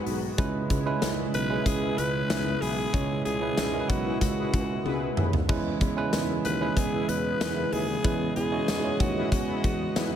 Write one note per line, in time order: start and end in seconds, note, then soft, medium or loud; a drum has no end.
0.00 0.34 D#3 medium
0.00 0.34 F#3 medium
0.00 0.38 G#3 medium
0.00 10.16 G#3 medium
0.00 2.90 B3 medium
0.00 0.40 D#4 medium
0.00 0.20 F#4 loud
0.00 0.34 F#4 medium
0.00 0.41 F#4 medium
0.00 0.20 G#4 medium
0.00 0.20 B4 loud
0.00 0.39 B4 medium
0.07 0.30 B1 medium
0.07 open hi-hat medium
0.38 0.62 C#2 medium
0.38 10.16 B2 medium
0.38 1.30 C#3 medium
0.38 10.16 C#3 medium
0.38 0.76 G#3 medium
0.38 0.76 C#4 medium
0.38 0.76 E4 medium
0.38 5.45 E4 medium
0.38 0.76 B4 loud
0.38 kick loud
0.38 closed hi-hat medium
0.70 0.93 C#2 loud
0.70 kick medium
0.70 closed hi-hat medium
0.86 1.36 G#3 medium
0.86 1.36 C#4 medium
0.86 1.37 E4 medium
0.86 1.37 B4 medium
1.02 1.26 C#2 loud
1.02 snare loud
1.02 closed hi-hat medium
1.34 1.57 B1 medium
1.34 1.68 B4 loud
1.34 closed hi-hat medium
1.49 2.50 G#3 medium
1.49 2.50 C#4 medium
1.49 2.50 E4 medium
1.49 1.64 E4 medium
1.49 1.64 G#4 loud
1.49 1.64 B4 loud
1.49 2.51 B4 medium
1.66 1.89 C#2 loud
1.66 1.99 G#4 loud
1.66 kick medium
1.66 closed hi-hat loud
1.82 1.96 E4 medium
1.82 1.96 G#4 medium
1.82 1.96 B4 loud
1.98 2.21 C#2 loud
1.98 2.62 B4 loud
1.98 closed hi-hat medium
2.30 2.53 C#2 medium
2.30 2.76 E4 loud
2.30 2.76 G#4 loud
2.30 2.76 B4 loud
2.30 snare loud
2.30 closed hi-hat medium
2.61 2.85 B1 medium
2.61 3.25 G#4 loud
2.61 open hi-hat medium
2.93 3.17 C#2 loud
2.93 5.47 A#2 medium
2.93 3.86 C#3 medium
2.93 3.31 G#3 medium
2.93 3.31 C#4 medium
2.93 3.31 E4 medium
2.93 3.32 C#5 medium
2.93 kick loud
2.93 closed hi-hat medium
3.25 3.49 C#2 loud
3.25 3.90 G#4 loud
3.25 closed hi-hat medium
3.41 3.67 G#3 medium
3.41 3.67 C#4 medium
3.41 3.67 E4 medium
3.41 3.67 B4 medium
3.57 3.81 C#2 medium
3.57 snare loud
3.57 closed hi-hat medium
3.57 tambourine medium
3.73 4.74 G#3 medium
3.73 4.74 C#4 medium
3.73 4.74 E4 medium
3.73 3.81 A#4 medium
3.81 4.77 B4 medium
3.89 4.13 B1 medium
3.89 4.20 F#4 medium
3.89 kick medium
3.89 closed hi-hat medium
4.05 4.19 E4 loud
4.05 4.19 G#4 medium
4.05 4.19 B4 loud
4.21 4.45 C#2 medium
4.21 5.13 F#4 medium
4.21 kick medium
4.21 closed hi-hat loud
4.38 4.51 E4 medium
4.38 4.51 G#4 medium
4.38 4.51 B4 loud
4.54 4.77 C#2 loud
4.54 kick medium
4.54 closed hi-hat medium
4.85 5.09 C#2 medium
4.85 5.31 E4 medium
4.85 5.31 G#4 loud
4.85 5.31 B4 loud
4.85 high tom medium
5.17 5.41 D#2 medium
5.17 mid tom medium
5.33 floor tom medium
5.48 5.72 E2 medium
5.48 6.41 E3 medium
5.48 5.86 G#3 medium
5.48 10.16 B3 medium
5.48 5.87 C#4 medium
5.48 5.87 E4 medium
5.48 8.02 E4 medium
5.48 5.87 B4 medium
5.48 kick loud
5.48 crash medium
5.81 6.04 E2 medium
5.81 kick medium
5.81 closed hi-hat medium
5.97 6.47 G#3 medium
5.97 6.47 C#4 medium
5.97 6.47 E4 medium
5.97 6.48 B4 loud
6.13 6.36 E2 loud
6.13 snare loud
6.13 closed hi-hat medium
6.13 tambourine medium
6.45 6.68 D#2 medium
6.45 6.79 B4 loud
6.45 closed hi-hat medium
6.61 7.61 G#3 medium
6.61 7.61 C#4 medium
6.61 6.74 E4 medium
6.61 7.62 E4 medium
6.61 6.74 G#4 medium
6.61 6.74 B4 loud
6.61 7.62 B4 medium
6.77 7.00 E2 medium
6.77 7.10 G#4 loud
6.77 kick medium
6.77 closed hi-hat loud
6.93 7.06 E4 medium
6.93 7.06 G#4 medium
6.93 7.06 B4 loud
7.09 7.32 E2 medium
7.09 7.74 B4 loud
7.09 closed hi-hat medium
7.41 7.64 E2 loud
7.41 7.86 E4 loud
7.41 7.86 G#4 medium
7.41 7.86 B4 loud
7.41 snare loud
7.41 closed hi-hat medium
7.41 tambourine medium
7.73 7.96 D#2 medium
7.73 8.36 G#4 loud
7.73 open hi-hat medium
8.04 8.28 E2 loud
8.04 8.96 E3 medium
8.04 8.42 G#3 medium
8.04 8.42 C#4 medium
8.04 8.42 E4 medium
8.04 8.42 B4 medium
8.04 10.16 D#5 medium
8.04 kick loud
8.04 closed hi-hat medium
8.36 8.60 E2 loud
8.36 9.02 G#4 medium
8.36 closed hi-hat medium
8.52 8.77 G#3 medium
8.52 8.77 C#4 medium
8.52 8.77 E4 medium
8.52 8.78 F#4 medium
8.68 8.92 E2 loud
8.68 snare loud
8.68 closed hi-hat medium
8.68 tambourine medium
8.83 9.84 G#3 medium
8.83 9.84 C#4 medium
8.83 9.84 E4 medium
8.83 9.85 C#5 medium
9.00 9.23 D#2 medium
9.00 9.32 F#4 medium
9.00 kick medium
9.00 closed hi-hat medium
9.16 9.30 E4 medium
9.16 9.30 G#4 medium
9.16 9.30 B4 loud
9.32 9.55 E2 loud
9.32 10.16 F#4 medium
9.32 kick medium
9.32 closed hi-hat medium
9.48 9.62 E4 medium
9.48 9.62 G#4 medium
9.48 9.62 B4 loud
9.64 9.87 E2 loud
9.64 kick medium
9.64 closed hi-hat medium
9.96 10.16 E2 medium
9.96 10.16 E4 medium
9.96 10.16 G#4 loud
9.96 10.16 B4 loud
9.96 snare loud
9.96 closed hi-hat medium
9.96 tambourine medium